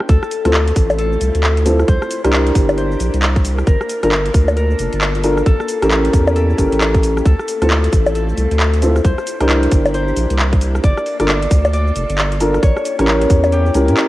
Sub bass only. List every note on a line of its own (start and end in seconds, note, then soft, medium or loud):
0.09 0.19 D2 loud
0.45 0.72 D2 medium
0.76 1.17 A1 medium
1.21 1.31 C2 medium
1.35 1.84 D2 medium
1.88 1.98 C2 loud
2.24 2.51 C2 medium
2.55 2.96 G1 medium
3.00 3.10 A#1 medium
3.14 3.63 C2 medium
3.67 3.77 G1 loud
4.03 4.30 G1 medium
4.34 4.75 D2 medium
4.79 4.89 F1 medium
4.93 5.42 G1 medium
5.46 5.56 A1 loud
5.82 6.09 A1 medium
6.13 6.54 E2 medium
6.58 6.68 G1 medium
6.72 7.21 A1 medium
7.25 7.35 D2 loud
7.62 7.89 D2 medium
7.93 8.33 A1 medium
8.37 8.47 C2 medium
8.51 9.00 D2 medium
9.05 9.14 C2 loud
9.41 9.68 C2 medium
9.72 10.12 G1 medium
10.16 10.26 A#1 medium
10.30 10.80 C2 medium
10.84 10.93 G1 loud
11.20 11.47 G1 medium
11.51 11.92 D2 medium
11.96 12.05 F1 medium
12.09 12.59 G1 medium
12.63 12.72 A1 loud
12.99 13.26 A1 medium
13.30 13.71 E2 medium
13.75 13.90 C#2 loud
13.89 13.95 A2 loud